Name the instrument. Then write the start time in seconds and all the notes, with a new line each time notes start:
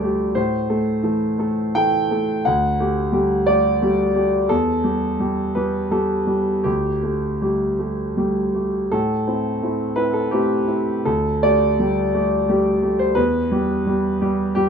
grand piano
Already playing: D2 G3 A3 G4 A4 D5
0.02 A3 G4
0.35 A2 C5
0.70 A3 A4
1.03 E3 A3 A4
1.39 A3 A4
1.75 E3 A3 A4 G5
2.11 A3 A4
2.45 D2 F#5
2.80 A3 G4
3.12 G3 A3 G4
3.46 A3 G4 D5
3.82 G3 A3 G4
4.14 A3 G4
4.49 E2 A4
4.84 G3 G4
5.20 G3 G4
5.55 G3 G4 B4
5.91 G3 G4 A4
6.27 G3 G4
6.64 D2 G4
7.03 A3 G4
7.41 G3 A3 G4
7.79 A3 G4
8.17 G3 A3 G4
8.54 A3 G4
8.91 A2 A4
9.27 C4 E4
9.62 A3 C4 E4
9.96 C4 E4 B4
10.13 A4
10.31 A3 C4 E4 G4
10.68 C4 E4
11.05 D2 A4
11.43 A3 G4 D5
11.79 G3 A3 G4
12.14 A3 G4
12.49 G3 A3 G4
12.83 A3 G4
12.99 C5
13.15 E2 B4
13.51 G3 G4
13.86 G3 G4
14.21 G3 G4
14.55 G3 G4